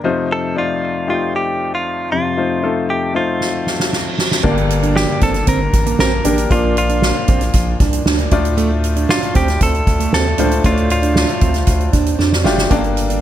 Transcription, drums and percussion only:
3.41 snare
3.67 snare
3.80 snare
3.93 snare
4.18 snare
4.31 snare
4.44 kick, crash
4.57 closed hi-hat
4.70 closed hi-hat
4.83 closed hi-hat
4.96 snare
5.21 kick, closed hi-hat
5.34 snare, closed hi-hat
5.47 kick, closed hi-hat
5.73 kick, closed hi-hat
5.86 closed hi-hat
5.99 snare
6.25 closed hi-hat
6.38 closed hi-hat
6.51 kick, closed hi-hat
6.77 closed hi-hat
6.89 closed hi-hat
7.02 snare
7.28 kick, closed hi-hat
7.41 snare, closed hi-hat
7.53 kick, closed hi-hat
7.80 kick, closed hi-hat
7.93 closed hi-hat
8.06 snare
8.19 closed hi-hat
8.31 kick, closed hi-hat
8.45 closed hi-hat
8.58 closed hi-hat
8.84 closed hi-hat
8.96 closed hi-hat
9.09 snare
9.23 closed hi-hat
9.35 kick, closed hi-hat
9.48 snare, closed hi-hat
9.61 kick, closed hi-hat
9.75 closed hi-hat
9.87 kick, closed hi-hat
10.00 closed hi-hat
10.13 snare
10.38 closed hi-hat
10.51 closed hi-hat
10.64 kick, closed hi-hat
10.77 closed hi-hat
10.90 closed hi-hat
11.03 closed hi-hat
11.16 snare
11.29 closed hi-hat
11.41 kick, closed hi-hat
11.54 snare, closed hi-hat
11.67 kick, closed hi-hat
11.80 closed hi-hat
11.93 kick, closed hi-hat
12.06 closed hi-hat
12.19 snare
12.32 snare
12.45 snare
12.58 snare
12.71 kick, closed hi-hat
12.84 closed hi-hat
12.97 closed hi-hat
13.10 closed hi-hat

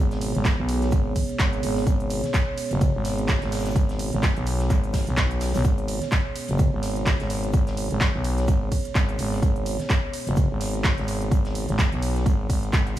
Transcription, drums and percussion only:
0.11 snare, closed hi-hat
0.21 open hi-hat, ride, shaker
0.35 closed hi-hat
0.44 kick, snare, clap, closed hi-hat, ride, shaker
0.69 open hi-hat, ride, shaker
0.82 snare, closed hi-hat
0.91 kick, closed hi-hat, ride, shaker
1.15 kick, open hi-hat, ride, shaker
1.29 closed hi-hat
1.39 kick, snare, clap, closed hi-hat, ride, shaker
1.53 closed hi-hat
1.63 open hi-hat, ride, shaker
1.76 snare, open hi-hat
1.87 kick, closed hi-hat, ride, shaker
2.00 closed hi-hat
2.10 open hi-hat, ride, shaker
2.24 snare, closed hi-hat
2.34 kick, snare, clap, closed hi-hat, ride, shaker
2.58 open hi-hat, ride, shaker
2.70 closed hi-hat
2.81 kick, closed hi-hat, ride, shaker
3.05 snare, open hi-hat, ride, shaker
3.18 closed hi-hat
3.28 kick, snare, clap, closed hi-hat, ride, shaker
3.41 snare, closed hi-hat
3.52 snare, open hi-hat, ride, shaker
3.59 snare, shaker
3.66 snare, closed hi-hat, shaker
3.70 snare, shaker
3.76 kick, closed hi-hat, ride, shaker
3.89 snare, closed hi-hat
3.99 open hi-hat, ride, shaker
4.13 closed hi-hat
4.23 kick, snare, clap, closed hi-hat, ride, shaker
4.36 closed hi-hat
4.46 open hi-hat, ride, shaker
4.60 snare, closed hi-hat
4.70 kick, clap, closed hi-hat, ride, shaker
4.84 closed hi-hat
4.93 kick, snare, open hi-hat, ride, shaker
5.07 closed hi-hat
5.17 kick, snare, clap, closed hi-hat, ride, shaker
5.31 closed hi-hat
5.41 snare, open hi-hat, ride, shaker
5.54 snare, open hi-hat, shaker
5.64 kick, closed hi-hat, ride, shaker
5.78 closed hi-hat
5.88 open hi-hat, ride, shaker
6.02 snare, closed hi-hat
6.12 kick, snare, clap, closed hi-hat, ride, shaker
6.36 open hi-hat, ride, shaker
6.48 closed hi-hat
6.59 kick, closed hi-hat, ride, shaker
6.83 snare, open hi-hat, ride, shaker
6.96 closed hi-hat
7.06 kick, snare, clap, closed hi-hat, ride, shaker
7.20 snare, closed hi-hat
7.30 snare, open hi-hat, ride, shaker
7.43 closed hi-hat
7.53 kick, closed hi-hat, ride, shaker
7.67 snare, closed hi-hat
7.77 open hi-hat, ride, shaker
7.91 closed hi-hat
8.00 kick, snare, clap, closed hi-hat, ride, shaker
8.24 open hi-hat, ride, shaker
8.37 snare, closed hi-hat
8.48 kick, closed hi-hat, ride, shaker
8.71 kick, open hi-hat, ride, shaker
8.85 closed hi-hat
8.95 kick, snare, clap, closed hi-hat, ride, shaker
9.09 closed hi-hat
9.19 open hi-hat, ride, shaker
9.32 snare, open hi-hat
9.43 kick, closed hi-hat, ride, shaker
9.56 closed hi-hat
9.66 open hi-hat, ride, shaker
9.80 snare, closed hi-hat
9.90 kick, snare, clap, closed hi-hat, ride, shaker
10.13 open hi-hat, ride, shaker
10.27 closed hi-hat
10.36 kick, closed hi-hat, ride, shaker
10.61 snare, open hi-hat, ride, shaker
10.74 closed hi-hat
10.84 kick, snare, clap, closed hi-hat, ride, shaker
10.98 snare, closed hi-hat
11.08 snare, open hi-hat, ride, shaker
11.21 closed hi-hat
11.31 kick, closed hi-hat, ride, shaker
11.45 snare, closed hi-hat
11.55 open hi-hat, ride, shaker
11.69 closed hi-hat
11.79 kick, snare, clap, closed hi-hat, ride, shaker
11.92 closed hi-hat
12.02 open hi-hat, ride, shaker
12.16 snare, closed hi-hat
12.26 kick, closed hi-hat, ride, shaker
12.50 kick, open hi-hat, ride, shaker
12.63 closed hi-hat
12.73 kick, snare, clap, closed hi-hat, ride, shaker
12.87 closed hi-hat

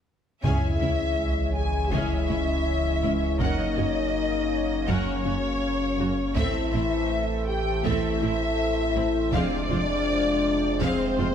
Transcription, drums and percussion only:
0.44 taiko
1.92 taiko
3.40 taiko
4.88 taiko
6.37 taiko
7.85 taiko
9.33 taiko
10.81 taiko
11.18 taiko high

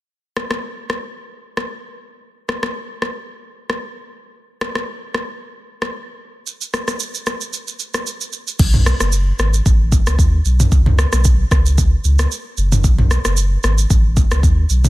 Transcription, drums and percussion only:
0.37 cross-stick
0.51 cross-stick
0.90 cross-stick
1.57 cross-stick
2.49 cross-stick
2.63 cross-stick
3.02 cross-stick
3.70 cross-stick
4.61 cross-stick
4.75 cross-stick
5.15 cross-stick
5.82 cross-stick
6.47 shaker
6.61 shaker
6.74 cross-stick, shaker
6.88 cross-stick, shaker
7.00 shaker
7.15 shaker
7.26 cross-stick, shaker
7.41 shaker
7.53 shaker
7.68 shaker
7.80 shaker
7.94 cross-stick, shaker
8.07 shaker
8.21 shaker
8.33 shaker
8.48 shaker
8.59 kick, crash, shaker
8.74 mid tom
8.86 cross-stick, shaker
9.00 cross-stick, shaker
9.12 shaker
9.39 cross-stick, shaker
9.54 shaker
9.66 kick, shaker
9.92 kick, shaker
10.07 cross-stick, shaker
10.19 kick, shaker
10.45 shaker
10.60 mid tom, shaker
10.72 kick, shaker
10.86 mid tom
10.99 cross-stick, shaker
11.13 cross-stick, shaker
11.25 kick, shaker
11.51 kick, cross-stick, shaker
11.66 shaker
11.78 kick, shaker
12.04 shaker
12.19 cross-stick, shaker
12.32 shaker
12.57 shaker
12.72 mid tom, shaker
12.84 kick, shaker
12.99 mid tom
13.11 cross-stick, shaker
13.25 cross-stick, shaker
13.37 shaker
13.64 cross-stick, shaker
13.78 shaker
13.90 kick, shaker
14.17 kick, shaker
14.31 cross-stick, shaker
14.43 kick, shaker
14.70 shaker
14.85 mid tom, shaker

